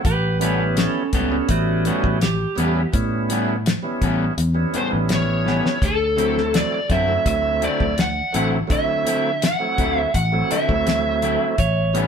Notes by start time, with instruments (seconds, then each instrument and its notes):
Already playing: lead electric guitar F#5
0.05 fingered electric bass A1, electric slide guitar G4 B4, kick, closed hi-hat
0.40 clean electric guitar A2 G3 B3 C#4, tonewheel organ G3 B3 C#4 E4, electric slide guitar G4 B4, closed hi-hat
0.77 electric slide guitar C#4 A4, snare, closed hi-hat
1.13 fingered electric bass C#2, clean electric guitar A2 G3 B3 C#4, electric slide guitar C#4 A4, kick, closed hi-hat
1.30 tonewheel organ G3 B3 C#4 E4
1.49 fingered electric bass A1, electric slide guitar A3 F#4, kick, closed hi-hat
1.85 clean electric guitar A2 G3 B3 C#4, electric slide guitar A3 F#4, closed hi-hat
2.04 fingered electric bass A1, kick
2.21 electric slide guitar G4, snare, closed hi-hat
2.56 fingered electric bass E2, clean electric guitar A2 G3 B3, tonewheel organ G3 B3 C#4 E4, closed hi-hat
2.60 clean electric guitar C#4
2.93 fingered electric bass A2, tonewheel organ G3 B3 C#4 E4, kick, closed hi-hat
3.30 clean electric guitar A2 G3 B3 C#4, closed hi-hat
3.66 snare, closed hi-hat
3.83 tonewheel organ G3 B3 C#4 E4
4.02 fingered electric bass A1, clean electric guitar A2 G3 B3 C#4, kick, closed hi-hat
4.38 fingered electric bass E2, closed hi-hat
4.54 tonewheel organ G3 B3 C#4 E4
4.74 clean electric guitar A2 G3 B3 C#4, lead electric guitar C5, muted fingered electric bass stroke, closed hi-hat
4.90 fingered electric bass A1, tonewheel organ G3 B3 C#4 E4
5.09 snare, closed hi-hat
5.14 lead electric guitar C#5
5.45 clean electric guitar A2 G3 B3 C#4, snare
5.66 snare
5.82 fingered electric bass D2, lead electric guitar A4, kick, closed hi-hat
6.16 clean electric guitar D3 F#3 C4 E4, tonewheel organ F#3 A3 C4 E4, closed hi-hat
6.38 snare
6.54 lead electric guitar D5, snare, closed hi-hat
6.89 fingered electric bass F#2, clean electric guitar D3 F#3 C4 E4, lead electric guitar E5, kick, closed hi-hat
7.07 tonewheel organ F#3 A3 C4 E4
7.26 fingered electric bass D2, lead electric guitar E5, kick, closed hi-hat
7.62 clean electric guitar D3 F#3 C4 E4, lead electric guitar D5, closed hi-hat
7.80 fingered electric bass D2, kick
7.98 lead electric guitar F#5, snare, closed hi-hat
8.33 fingered electric bass A1, clean electric guitar D3 F#3 C4 E4, tonewheel organ F#3 A3 C4 E4, lead electric guitar F#5, closed hi-hat
8.67 fingered electric bass D3, tonewheel organ F#3 A3 C4 E4, kick, closed hi-hat
8.72 lead electric guitar E5
9.06 clean electric guitar D3 F#3 C4 E4, closed hi-hat
9.42 lead electric guitar F#5, snare, closed hi-hat
9.59 tonewheel organ F#3 A3 C4 E4
9.78 fingered electric bass D2, clean electric guitar D3 F#3 C4 E4, kick, closed hi-hat
9.99 lead electric guitar E5
10.14 fingered electric bass A1, lead electric guitar F#5, kick, closed hi-hat
10.32 tonewheel organ F#3 A3 C4 E4
10.51 clean electric guitar D3 F#3 C4 E4, lead electric guitar E5, muted fingered electric bass stroke, closed hi-hat
10.68 fingered electric bass D2, tonewheel organ F#3 A3 C4 E4, kick
10.87 snare, closed hi-hat
11.22 clean electric guitar D3 F#3 C4 E4, closed hi-hat
11.58 fingered electric bass A1, electric slide guitar C#5, kick, closed hi-hat
11.93 clean electric guitar A2 G3 B3 C#4, tonewheel organ G3 B3 C#4 E4, closed hi-hat